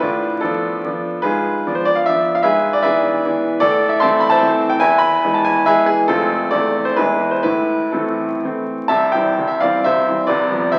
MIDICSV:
0, 0, Header, 1, 2, 480
1, 0, Start_track
1, 0, Key_signature, 0, "minor"
1, 0, Tempo, 409836
1, 36, Time_signature, 3, 2, 24, 8
1, 2440, Tempo, 392157
1, 5800, Tempo, 422535
1, 7240, Tempo, 449438
1, 8680, Tempo, 481155
1, 11080, Tempo, 442804
1, 12098, End_track
2, 0, Start_track
2, 0, Title_t, "Grand piano"
2, 0, Program_c, 0, 0
2, 0, Note_on_c, 0, 71, 89
2, 11, Note_on_c, 0, 65, 62
2, 17, Note_on_c, 0, 62, 64
2, 33, Note_on_c, 0, 45, 66
2, 234, Control_c, 0, 64, 127
2, 460, Note_off_c, 0, 65, 0
2, 463, Note_off_c, 0, 62, 0
2, 476, Note_on_c, 0, 69, 79
2, 487, Note_off_c, 0, 71, 0
2, 489, Note_on_c, 0, 65, 57
2, 490, Note_off_c, 0, 45, 0
2, 491, Note_on_c, 0, 62, 62
2, 503, Note_on_c, 0, 53, 50
2, 509, Note_on_c, 0, 59, 49
2, 958, Note_off_c, 0, 53, 0
2, 961, Note_off_c, 0, 59, 0
2, 997, Note_on_c, 0, 53, 50
2, 998, Note_off_c, 0, 62, 0
2, 1001, Note_on_c, 0, 59, 51
2, 1015, Note_on_c, 0, 62, 54
2, 1023, Control_c, 0, 64, 0
2, 1416, Note_off_c, 0, 65, 0
2, 1420, Note_off_c, 0, 53, 0
2, 1422, Note_off_c, 0, 59, 0
2, 1430, Note_off_c, 0, 62, 0
2, 1430, Note_on_c, 0, 71, 94
2, 1445, Note_on_c, 0, 68, 66
2, 1449, Note_on_c, 0, 65, 69
2, 1457, Note_off_c, 0, 69, 0
2, 1460, Note_on_c, 0, 44, 70
2, 1667, Control_c, 0, 64, 127
2, 1932, Note_off_c, 0, 44, 0
2, 1954, Note_on_c, 0, 62, 61
2, 1955, Note_on_c, 0, 53, 54
2, 1956, Note_on_c, 0, 59, 53
2, 1966, Control_c, 0, 64, 0
2, 2021, Note_off_c, 0, 68, 0
2, 2024, Note_off_c, 0, 65, 0
2, 2049, Note_on_c, 0, 72, 72
2, 2058, Note_off_c, 0, 71, 0
2, 2171, Note_on_c, 0, 74, 105
2, 2188, Note_off_c, 0, 72, 0
2, 2290, Note_on_c, 0, 77, 88
2, 2307, Note_off_c, 0, 74, 0
2, 2393, Note_off_c, 0, 62, 0
2, 2394, Note_off_c, 0, 53, 0
2, 2394, Note_off_c, 0, 59, 0
2, 2410, Note_on_c, 0, 76, 100
2, 2423, Note_off_c, 0, 77, 0
2, 2438, Note_on_c, 0, 53, 52
2, 2444, Note_on_c, 0, 59, 50
2, 2453, Note_on_c, 0, 62, 63
2, 2766, Note_on_c, 0, 77, 93
2, 2772, Note_off_c, 0, 76, 0
2, 2854, Note_off_c, 0, 53, 0
2, 2857, Note_off_c, 0, 59, 0
2, 2860, Note_on_c, 0, 76, 104
2, 2862, Note_off_c, 0, 62, 0
2, 2871, Note_on_c, 0, 71, 79
2, 2877, Note_on_c, 0, 68, 84
2, 2890, Note_off_c, 0, 77, 0
2, 2891, Note_on_c, 0, 44, 73
2, 3119, Control_c, 0, 64, 127
2, 3214, Note_off_c, 0, 71, 0
2, 3217, Note_off_c, 0, 68, 0
2, 3234, Note_off_c, 0, 76, 0
2, 3234, Note_on_c, 0, 74, 93
2, 3348, Note_on_c, 0, 76, 102
2, 3358, Note_on_c, 0, 71, 74
2, 3359, Note_off_c, 0, 44, 0
2, 3360, Note_on_c, 0, 68, 72
2, 3369, Note_off_c, 0, 74, 0
2, 3371, Note_on_c, 0, 52, 58
2, 3379, Note_on_c, 0, 62, 70
2, 3382, Note_on_c, 0, 59, 58
2, 3816, Note_off_c, 0, 52, 0
2, 3820, Note_off_c, 0, 62, 0
2, 3821, Note_off_c, 0, 59, 0
2, 3871, Note_on_c, 0, 52, 58
2, 3881, Note_on_c, 0, 59, 56
2, 3882, Note_on_c, 0, 62, 60
2, 3885, Control_c, 0, 64, 0
2, 4285, Note_off_c, 0, 71, 0
2, 4286, Note_off_c, 0, 68, 0
2, 4298, Note_off_c, 0, 52, 0
2, 4298, Note_on_c, 0, 74, 124
2, 4303, Note_off_c, 0, 59, 0
2, 4304, Note_off_c, 0, 62, 0
2, 4307, Note_on_c, 0, 69, 88
2, 4322, Note_on_c, 0, 45, 83
2, 4329, Note_off_c, 0, 76, 0
2, 4547, Control_c, 0, 64, 127
2, 4653, Note_on_c, 0, 76, 87
2, 4660, Note_off_c, 0, 69, 0
2, 4683, Note_off_c, 0, 74, 0
2, 4787, Note_off_c, 0, 76, 0
2, 4787, Note_on_c, 0, 84, 109
2, 4804, Note_on_c, 0, 81, 79
2, 4805, Note_on_c, 0, 76, 90
2, 4806, Note_off_c, 0, 45, 0
2, 4816, Note_on_c, 0, 52, 70
2, 4824, Note_on_c, 0, 57, 67
2, 4829, Note_on_c, 0, 60, 66
2, 5034, Note_on_c, 0, 83, 93
2, 5052, Note_off_c, 0, 76, 0
2, 5052, Note_off_c, 0, 81, 0
2, 5062, Note_off_c, 0, 84, 0
2, 5149, Note_on_c, 0, 81, 123
2, 5165, Note_on_c, 0, 72, 93
2, 5168, Note_on_c, 0, 76, 92
2, 5181, Note_off_c, 0, 83, 0
2, 5269, Note_off_c, 0, 52, 0
2, 5273, Note_off_c, 0, 57, 0
2, 5275, Note_off_c, 0, 60, 0
2, 5293, Note_on_c, 0, 52, 61
2, 5309, Note_on_c, 0, 57, 64
2, 5311, Note_on_c, 0, 60, 71
2, 5343, Control_c, 0, 64, 0
2, 5624, Note_off_c, 0, 72, 0
2, 5626, Note_off_c, 0, 76, 0
2, 5637, Note_on_c, 0, 79, 105
2, 5651, Note_off_c, 0, 81, 0
2, 5734, Note_off_c, 0, 52, 0
2, 5743, Note_off_c, 0, 57, 0
2, 5744, Note_off_c, 0, 60, 0
2, 5763, Note_on_c, 0, 80, 127
2, 5771, Note_on_c, 0, 71, 93
2, 5778, Note_off_c, 0, 79, 0
2, 5781, Note_on_c, 0, 76, 93
2, 5786, Note_on_c, 0, 40, 76
2, 5977, Note_on_c, 0, 83, 124
2, 6002, Note_off_c, 0, 71, 0
2, 6007, Note_off_c, 0, 76, 0
2, 6015, Note_off_c, 0, 80, 0
2, 6020, Control_c, 0, 64, 127
2, 6261, Note_off_c, 0, 40, 0
2, 6272, Note_on_c, 0, 52, 67
2, 6275, Note_on_c, 0, 56, 64
2, 6279, Note_on_c, 0, 59, 69
2, 6381, Note_off_c, 0, 83, 0
2, 6384, Note_on_c, 0, 81, 82
2, 6502, Note_on_c, 0, 80, 113
2, 6520, Note_off_c, 0, 81, 0
2, 6721, Note_off_c, 0, 52, 0
2, 6723, Note_off_c, 0, 56, 0
2, 6725, Note_off_c, 0, 59, 0
2, 6744, Note_on_c, 0, 76, 108
2, 6756, Note_on_c, 0, 68, 93
2, 6756, Note_on_c, 0, 71, 92
2, 6757, Note_off_c, 0, 80, 0
2, 6763, Note_on_c, 0, 52, 63
2, 6766, Note_on_c, 0, 56, 60
2, 6773, Note_on_c, 0, 59, 62
2, 6781, Control_c, 0, 64, 0
2, 6957, Note_off_c, 0, 68, 0
2, 6974, Note_on_c, 0, 68, 101
2, 6982, Note_off_c, 0, 71, 0
2, 6994, Note_off_c, 0, 76, 0
2, 7191, Note_off_c, 0, 52, 0
2, 7192, Note_off_c, 0, 56, 0
2, 7195, Note_off_c, 0, 59, 0
2, 7221, Note_on_c, 0, 69, 101
2, 7223, Note_off_c, 0, 68, 0
2, 7230, Note_on_c, 0, 65, 78
2, 7232, Note_on_c, 0, 60, 77
2, 7238, Note_on_c, 0, 41, 77
2, 7240, Note_on_c, 0, 48, 56
2, 7250, Note_on_c, 0, 57, 62
2, 7451, Control_c, 0, 64, 127
2, 7657, Note_off_c, 0, 48, 0
2, 7663, Note_off_c, 0, 57, 0
2, 7663, Note_off_c, 0, 65, 0
2, 7664, Note_off_c, 0, 60, 0
2, 7674, Note_off_c, 0, 69, 0
2, 7679, Note_on_c, 0, 74, 103
2, 7686, Note_off_c, 0, 41, 0
2, 7690, Note_on_c, 0, 69, 68
2, 7707, Note_on_c, 0, 40, 63
2, 7708, Note_on_c, 0, 52, 45
2, 7711, Note_on_c, 0, 57, 51
2, 7717, Control_c, 0, 64, 0
2, 7719, Note_on_c, 0, 60, 52
2, 7936, Control_c, 0, 64, 127
2, 8038, Note_off_c, 0, 69, 0
2, 8046, Note_on_c, 0, 72, 85
2, 8058, Note_off_c, 0, 74, 0
2, 8151, Note_off_c, 0, 52, 0
2, 8152, Note_off_c, 0, 57, 0
2, 8156, Note_off_c, 0, 60, 0
2, 8168, Note_on_c, 0, 71, 96
2, 8178, Note_off_c, 0, 40, 0
2, 8178, Note_off_c, 0, 72, 0
2, 8178, Note_on_c, 0, 68, 64
2, 8186, Note_on_c, 0, 64, 68
2, 8195, Note_on_c, 0, 40, 67
2, 8197, Note_on_c, 0, 52, 49
2, 8199, Note_on_c, 0, 56, 52
2, 8205, Control_c, 0, 64, 0
2, 8210, Note_on_c, 0, 59, 54
2, 8376, Control_c, 0, 64, 127
2, 8524, Note_off_c, 0, 68, 0
2, 8528, Note_off_c, 0, 64, 0
2, 8537, Note_on_c, 0, 72, 69
2, 8545, Note_off_c, 0, 71, 0
2, 8641, Note_off_c, 0, 52, 0
2, 8642, Note_off_c, 0, 56, 0
2, 8647, Note_off_c, 0, 59, 0
2, 8664, Note_on_c, 0, 71, 96
2, 8668, Note_off_c, 0, 40, 0
2, 8671, Note_off_c, 0, 72, 0
2, 8676, Note_on_c, 0, 64, 67
2, 8689, Note_on_c, 0, 45, 67
2, 8695, Control_c, 0, 64, 0
2, 8887, Control_c, 0, 64, 127
2, 9129, Note_off_c, 0, 64, 0
2, 9153, Note_on_c, 0, 69, 58
2, 9155, Note_off_c, 0, 45, 0
2, 9158, Note_off_c, 0, 71, 0
2, 9166, Note_on_c, 0, 64, 46
2, 9167, Note_on_c, 0, 60, 48
2, 9170, Note_on_c, 0, 52, 56
2, 9177, Note_on_c, 0, 57, 51
2, 9619, Note_off_c, 0, 52, 0
2, 9623, Note_off_c, 0, 57, 0
2, 9667, Control_c, 0, 64, 0
2, 9671, Note_off_c, 0, 60, 0
2, 9680, Note_on_c, 0, 52, 46
2, 9682, Note_on_c, 0, 57, 47
2, 9686, Note_on_c, 0, 60, 54
2, 9855, Note_off_c, 0, 64, 0
2, 9888, Note_off_c, 0, 69, 0
2, 10100, Note_off_c, 0, 52, 0
2, 10101, Note_off_c, 0, 57, 0
2, 10103, Note_off_c, 0, 60, 0
2, 10113, Note_on_c, 0, 81, 100
2, 10123, Note_on_c, 0, 76, 87
2, 10134, Note_on_c, 0, 48, 66
2, 10136, Note_on_c, 0, 36, 68
2, 10344, Note_off_c, 0, 76, 0
2, 10351, Note_on_c, 0, 79, 93
2, 10356, Note_off_c, 0, 81, 0
2, 10359, Note_off_c, 0, 48, 0
2, 10360, Note_off_c, 0, 36, 0
2, 10361, Control_c, 0, 64, 127
2, 10364, Note_on_c, 0, 76, 64
2, 10378, Note_on_c, 0, 52, 58
2, 10382, Note_on_c, 0, 55, 52
2, 10382, Note_on_c, 0, 60, 59
2, 10591, Note_off_c, 0, 52, 0
2, 10593, Note_off_c, 0, 55, 0
2, 10593, Note_off_c, 0, 60, 0
2, 10615, Note_on_c, 0, 48, 59
2, 10616, Note_on_c, 0, 36, 58
2, 10617, Control_c, 0, 64, 0
2, 10692, Note_off_c, 0, 76, 0
2, 10706, Note_on_c, 0, 76, 79
2, 10723, Note_off_c, 0, 79, 0
2, 10835, Note_on_c, 0, 77, 99
2, 10838, Note_off_c, 0, 76, 0
2, 10845, Note_on_c, 0, 74, 80
2, 10846, Note_off_c, 0, 48, 0
2, 10847, Note_off_c, 0, 36, 0
2, 10852, Note_on_c, 0, 52, 58
2, 10863, Note_on_c, 0, 55, 55
2, 10865, Note_on_c, 0, 60, 63
2, 11059, Note_off_c, 0, 52, 0
2, 11062, Note_off_c, 0, 74, 0
2, 11065, Note_off_c, 0, 55, 0
2, 11066, Note_off_c, 0, 60, 0
2, 11073, Note_off_c, 0, 77, 0
2, 11073, Note_on_c, 0, 76, 98
2, 11086, Note_on_c, 0, 72, 81
2, 11093, Note_on_c, 0, 48, 62
2, 11098, Note_on_c, 0, 36, 65
2, 11320, Note_off_c, 0, 48, 0
2, 11322, Note_off_c, 0, 36, 0
2, 11337, Note_on_c, 0, 52, 54
2, 11342, Note_on_c, 0, 60, 56
2, 11343, Note_on_c, 0, 55, 54
2, 11523, Note_off_c, 0, 72, 0
2, 11532, Note_on_c, 0, 74, 97
2, 11539, Note_off_c, 0, 52, 0
2, 11540, Note_on_c, 0, 71, 75
2, 11542, Note_off_c, 0, 60, 0
2, 11543, Note_off_c, 0, 55, 0
2, 11549, Note_off_c, 0, 76, 0
2, 11559, Note_on_c, 0, 36, 69
2, 11559, Note_on_c, 0, 48, 75
2, 11755, Control_c, 0, 64, 127
2, 11785, Note_off_c, 0, 36, 0
2, 11785, Note_off_c, 0, 48, 0
2, 11796, Note_on_c, 0, 53, 57
2, 11802, Note_on_c, 0, 55, 55
2, 11805, Note_on_c, 0, 59, 61
2, 11996, Note_off_c, 0, 71, 0
2, 12016, Note_off_c, 0, 53, 0
2, 12019, Note_off_c, 0, 55, 0
2, 12020, Note_off_c, 0, 59, 0
2, 12020, Note_on_c, 0, 76, 95
2, 12026, Note_off_c, 0, 74, 0
2, 12029, Note_on_c, 0, 72, 68
2, 12040, Note_on_c, 0, 48, 61
2, 12046, Note_on_c, 0, 36, 60
2, 12053, Control_c, 0, 64, 0
2, 12098, Note_off_c, 0, 36, 0
2, 12098, Note_off_c, 0, 48, 0
2, 12098, Note_off_c, 0, 72, 0
2, 12098, Note_off_c, 0, 76, 0
2, 12098, End_track
0, 0, End_of_file